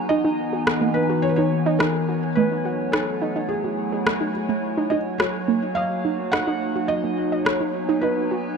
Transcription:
Already playing: F#3 B3 D#4 F#4 G#5 A#5
0.09 E3 D#4 D#5
0.25 D#4
0.53 F#4
0.67 cross-stick
0.81 A#3
0.94 B4
1.10 F#4 C#5
1.22 C#5
1.29 B4
1.36 D#4 C#5
1.66 D#4
1.79 D#4 A#4, cross-stick
2.09 F#4
2.35 F#3 A3 B4
2.65 F#4
2.75 A3
2.92 D#4 A4, cross-stick
3.22 D#4
3.36 D#4 E4
3.49 G#4
3.64 F#4
3.92 G#4
4.07 cross-stick
4.21 D#4
4.49 A3
4.63 F#3
4.77 D#4
4.90 D#4 D#5
5.06 D#4
5.18 A#3 F#4 C#5, cross-stick
5.48 A#3
5.65 F#4
5.75 D#5 F5
6.05 D#4
6.32 D#4 F#5, cross-stick
6.47 D#4
6.76 F#4
6.88 F#3 D#5
7.04 A#3
7.32 D#5
7.41 G#5
7.45 C#5, cross-stick
7.50 B3
7.60 D#4
7.89 D#4 A#5
8.01 D#4 B4
8.31 F#4

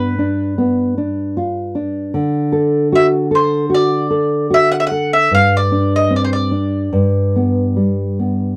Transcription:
Already playing: G2 B3 B4
0.19 D4
0.58 B3
0.98 D4
1.37 F4
1.75 D4
2.14 D3
2.52 A4
2.92 F#4 E5
3.31 A4
3.35 C5
3.70 F#4
3.74 D5
4.10 A4
4.50 F#4 E5
4.72 F#5
4.80 E5
4.87 F#5
4.91 A4
5.13 E5
5.31 G2 F5
5.57 D5
5.72 D4
5.96 D#5
6.11 C4
6.16 D5
6.24 C5
6.33 D5
6.51 D4
6.93 G2
7.36 B3
7.76 G3
8.19 B3

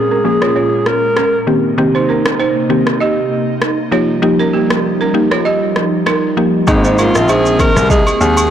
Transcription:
Already playing: A#2 G#3 C#4 G#4
0.11 C#4 A#4
0.24 F3 A#3 C#4 G#4
0.41 F4 C#5, cross-stick
0.56 F4 C#5
0.86 A#4, cross-stick
1.17 C#4 A#4, cross-stick
1.47 C3 D#3 A#3 C4 D#4 G4
1.78 D#3 A#3 C4 G4
1.95 D#4 C5
2.09 C#4 A#4
2.26 cross-stick
2.40 D#4 C5
2.69 D#3 A#3 C4 G4
2.87 cross-stick
3.00 G4 D#5
3.62 cross-stick
3.91 F3 G3 A#3 D#4 F4 G4 C#5
4.22 F3 A#3 D#4 G4
4.39 C#4 A#4
4.53 A#3 G4
4.70 cross-stick
5.01 C#4 A#4
5.14 F3 A#3 D#4 G4
5.31 F4 C#5, cross-stick
5.45 G4 D#5
5.76 cross-stick
6.06 D#4 A#4, cross-stick
6.37 F3 A#3 D#4 G4
6.67 G#1 D#3 G#3 A#3 C4 D#4 G#4, kick, high agogo, shaker
6.84 D#4 C5, shaker
6.98 C#4 F4 A#4, high agogo, shaker
7.15 A#1, cross-stick, shaker
7.29 D#4 G#4 C5, high agogo, low woodblock, shaker
7.46 shaker
7.59 D#3 A#3 C4 G#4 A#4, kick, high agogo, shaker
7.76 C2, cross-stick, shaker
7.90 G#4 D#5, kick, shaker
8.07 high agogo, shaker
8.21 D#2 G#4, shaker
8.37 high agogo, shaker

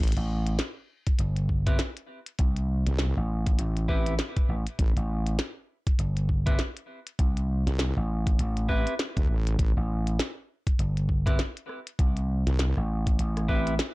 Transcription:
0.00 A1, closed hi-hat
0.08 closed hi-hat
0.12 closed hi-hat
0.16 A1, closed hi-hat
0.47 closed hi-hat
0.59 snare, closed hi-hat
1.07 kick, closed hi-hat
1.19 G1, closed hi-hat
1.36 closed hi-hat
1.49 kick
1.66 C4 E4 G4 B4, kick, closed hi-hat
1.79 snare, closed hi-hat
1.97 closed hi-hat
2.26 closed hi-hat
2.39 C2, kick, closed hi-hat
2.56 closed hi-hat
2.87 C2, snare, closed hi-hat
2.99 snare
3.17 A1
3.47 kick, closed hi-hat
3.59 A1, closed hi-hat
3.77 closed hi-hat
3.88 C4 E4 G4 B4, kick
4.06 closed hi-hat
4.19 snare, closed hi-hat
4.36 kick, closed hi-hat
4.49 A1
4.67 closed hi-hat
4.79 A1, kick, closed hi-hat
4.96 A1, closed hi-hat
5.27 closed hi-hat
5.39 snare, closed hi-hat
5.87 kick, closed hi-hat
5.99 G1, closed hi-hat
6.17 closed hi-hat
6.29 kick
6.46 C4 E4 G4 B4, kick, closed hi-hat
6.59 snare, closed hi-hat
6.77 closed hi-hat
7.07 closed hi-hat
7.19 C2, kick, closed hi-hat
7.37 closed hi-hat
7.67 C2, snare, closed hi-hat
7.79 snare, closed hi-hat
7.97 A1
8.27 kick, closed hi-hat
8.39 A1, closed hi-hat
8.57 closed hi-hat
8.69 C4 E4 G4 B4, kick
8.87 closed hi-hat
8.99 snare, closed hi-hat
9.17 D2, kick, closed hi-hat
9.29 A1
9.47 closed hi-hat
9.59 A1, kick, closed hi-hat
9.77 A1
10.07 closed hi-hat
10.19 snare, closed hi-hat
10.67 kick, closed hi-hat
10.79 G1, closed hi-hat
10.97 closed hi-hat
11.09 kick
11.26 C4 E4 G4 B4, kick, cross-stick, closed hi-hat
11.39 snare, closed hi-hat
11.57 closed hi-hat
11.69 cross-stick
11.87 closed hi-hat
11.99 C2, kick, closed hi-hat
12.17 closed hi-hat
12.47 C2, snare, closed hi-hat
12.59 snare, closed hi-hat
12.77 A1, cross-stick
13.07 kick, closed hi-hat
13.19 A1, closed hi-hat
13.37 cross-stick, closed hi-hat
13.48 C4 E4 G4 B4, kick
13.67 closed hi-hat
13.79 snare, closed hi-hat

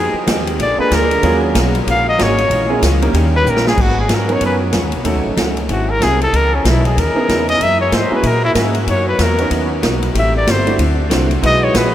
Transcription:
Already playing: F2 F3 G#3 D#4 G4 G#4
0.13 muted upright bass stroke
0.26 D#2 F3 G#3 C4 D#4 F4 G4, kick, snare, hi-hat pedal, ride
0.47 ride
0.58 A#1 A#2 D3 G#3 A#3 D4 F4 D5, kick, ride
0.78 G#3 A#3 D4 F4 G#4 B4, muted upright bass stroke
0.91 D2 A#2 G#3 D4 F4 A#4, kick, snare, hi-hat pedal, ride
1.11 ride
1.22 D#2 C#3 D#3 F#3 G#3 A#3 C#4 F4 F#4 G#4, kick, ride
1.54 B1 D#3 G#3 C#4 F#4, kick, snare, hi-hat pedal, ride
1.75 ride
1.87 A#1 D#3 G#3 C#4 F#4 F5, kick, ride
2.09 D#5
2.18 G#1 D#3 F#3 G#3 A#3 C#4 F4 F#4 G#4, kick, snare, hi-hat pedal, ride
2.23 C#5
2.38 ride
2.50 A#1 A#2 C#3 E3 G#3 A#3 C#4 E4, kick, ride
2.69 G#3 A#3 C#4 E4 G#4
2.81 C#2 A#2 E3 G#3 C#4, kick, snare, hi-hat pedal, ride
3.02 G3 A#3 C#4 D#4 A#4, ride
3.13 D#2 C#3 D#3 G3 A#3 C#4 D#4 G4, kick, ride
3.36 B4
3.45 A#1 D#3 A#3 C#4 G4, hi-hat pedal
3.50 A#4
3.57 snare
3.67 G#4, snare
3.76 G#1 G#2 C#3 F#3 B3 C#4 F#4 A#4, kick, crash
3.82 F#4
4.00 G#4
4.09 G#2 F#3 B3 C#4, kick, snare, hi-hat pedal, ride
4.14 A#4
4.28 F#3 B3 C#4 D#4 A#4, ride
4.33 C#5
4.40 F#2 G#2 F#3 B3 C#4, kick, ride
4.46 B4
4.72 E2 G#2 F#3 B3 C#4, kick, snare, hi-hat pedal, ride
4.83 D#2
4.92 B1, ride
5.04 D#2 D#3 F#3 A3 C#4 D#4 F#4 A4, kick, ride
5.15 C#2
5.26 A1
5.37 C#2 D#3 A3 C#4 F#4, kick, snare, hi-hat pedal, ride
5.57 ride
5.68 G#1 G#2 C3 F#3 G#3 C4 E4 F#4, kick, ride
5.90 A#4
6.00 C2 G#2 F#3 C4 D#4 E4 G#4 A#4, kick, snare, hi-hat pedal, ride
6.21 A4, ride
6.33 C#2 C#3 E3 B3 D#4 A#4 D#5, kick, ride
6.55 C#4
6.64 B1 C#3 E3 B3 D#4, kick, snare, hi-hat pedal, ride
6.68 E4
6.85 G#4, ride
6.96 D#2 C#3 E3 B3 D#4 A#4, kick, ride
7.15 B3 C#4 D#4 E4 G#4, muted upright bass stroke
7.28 E2 C#3 E3 B3 D#4, kick, snare, hi-hat pedal, ride
7.49 D#5, ride
7.59 F#2 F#3 G#3 A#3 E4 F#4 G#4 A#4 E5, kick, ride
7.81 C#5
7.91 G#2 F#3 A#3 E4 G#4 C5, kick, snare, hi-hat pedal, ride
8.11 A#3 C#4 E4 F#4 G#4 B4, muted upright bass stroke
8.23 A#2 F#3 A#3 E4 G#4 A#4, kick, ride
8.45 E4
8.55 G#2 F#3 A#3 C#4 E4 F#4 G#4, kick, snare, hi-hat pedal, ride
8.75 ride
8.87 F#2 B2 D#3 F#3 A#3 B3 D#4 C#5, kick, ride
9.08 B4
9.19 E2 B2 F#3 A#3 D#4 A#4, kick, snare, hi-hat pedal, ride
9.38 B3 C#4 D#4 F#4 A#4, ride
9.50 D#2 B2 F#3 A#3 D#4, kick, ride
9.82 B1 B2 F#3 A#3 D#4, kick, snare, hi-hat pedal, ride
10.02 ride
10.14 A1 A2 G3 A3 C4 E4 G4, kick, ride
10.19 E5
10.37 D5
10.46 G1 A2 G3 C4 E4, kick, snare, hi-hat pedal, ride
10.51 C5
10.66 A3 D4 E4 F#4 C5, ride
10.78 D2 D3 F#3 C4 D4 E4 F#4, kick, ride
11.10 C2 D3 F#3 A3 C4 D4 E4 F#4 C5, kick, snare, hi-hat pedal, ride
11.31 ride
11.42 B1 E3 G#3 D#4 E4 F#4 B4 D#5, kick, ride
11.46 D#5
11.64 C#5
11.74 A#1 E3 G#3 D#4 F#4 B4, kick, snare, hi-hat pedal, ride

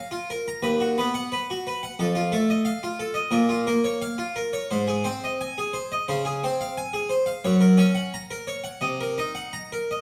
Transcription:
Already playing: F5
0.11 F4
0.30 A#4
0.48 A#5
0.63 D#2 B4
0.80 F#4
0.98 B3 B4
1.14 F#5
1.32 B4
1.50 F#4
1.67 B4
1.83 F#5
1.99 F2 A4
2.15 F4
2.32 A3 A4
2.50 D#5
2.65 F5
2.83 F4
3.00 A4
3.14 D#5
3.31 A#2 A#4
3.49 F4
3.67 A#3 A#4
3.84 C#5
4.02 F5
4.18 F4
4.36 A#4
4.53 C#5
4.71 G#2 C5
4.88 G#4
5.04 C4 C5
5.24 D#5
5.41 G#5
5.58 G#4
5.73 C5
5.92 D#5
6.08 C#3 C5
6.25 G#4
6.43 C4 C5
6.61 F5
6.77 G#5
6.93 G#4
7.09 C5
7.26 F5
7.44 F#2 C#5
7.61 A#4
7.77 C#4 C#5
7.95 F#5
8.14 A#5
8.31 A#4
8.47 C#5
8.64 F#5
8.81 C3 D#5
9.01 A#4
9.18 D#4 D#5
9.35 F#5
9.53 A#5
9.72 A#4
9.91 D#5

